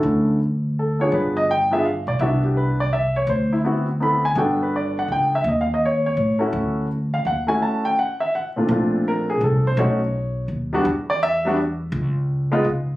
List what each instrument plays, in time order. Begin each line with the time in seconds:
Already playing: grand piano D3 C#4 E4 F#4 A4
0.03 upright bass D2
0.79 grand piano A4
0.99 grand piano B3 D4 F4 G#4 C#5
1.12 upright bass G1, grand piano B4
1.37 grand piano D#5
1.51 grand piano G5
1.71 grand piano B3 D4 F4 G#4 E5
1.85 grand piano F5
2.07 upright bass B1, grand piano D5
2.19 upright bass C2, grand piano B3 D4 E4 F#4 E5
2.40 grand piano F#4
2.45 grand piano G4
2.57 grand piano B4
2.80 grand piano D5
2.93 grand piano E5
3.16 grand piano C#5
3.27 upright bass D2, grand piano C5
3.53 grand piano E4
3.64 grand piano B3 C4 E4 F#4
4.00 grand piano B3 C4 E4 A4 B5
4.25 grand piano G#5
4.35 upright bass G1, grand piano B3 D4 F#4 A4 G5
4.63 grand piano B4
4.76 grand piano D5
4.99 grand piano F#5
5.08 upright bass C#2, grand piano G5
5.35 grand piano E5
5.44 upright bass D#2
5.48 grand piano D#5
5.61 grand piano F5
5.74 grand piano D#5
5.85 grand piano C#5
6.06 grand piano C#5
6.17 upright bass A2
6.39 grand piano A3 C#4 E4 F#4
6.53 upright bass D2
7.14 grand piano F5
7.25 upright bass D#2, grand piano F#5
7.47 grand piano A3 C#4 E4 F#4 G#5
7.62 grand piano A5
7.85 grand piano G5
7.99 grand piano F#5
8.20 grand piano E5
8.35 grand piano F#5
8.56 grand piano A#2 A3 C4 D4 F4
8.69 upright bass A#1, grand piano A3 C4 D4 F4
9.08 grand piano A#4
9.30 grand piano G#4
9.41 upright bass C2, grand piano A4
9.67 grand piano C5
9.77 upright bass B1, grand piano A3 C#4 D#4 F#4 C#5
10.48 upright bass D#2
10.73 grand piano G3 B3 D4 F#4
10.85 upright bass E2
11.10 grand piano D5
11.23 grand piano E5
11.45 grand piano G3 B3 D4 F#4
11.92 upright bass C#2
12.52 grand piano G#3 B3 D#4 F4
12.64 upright bass C#3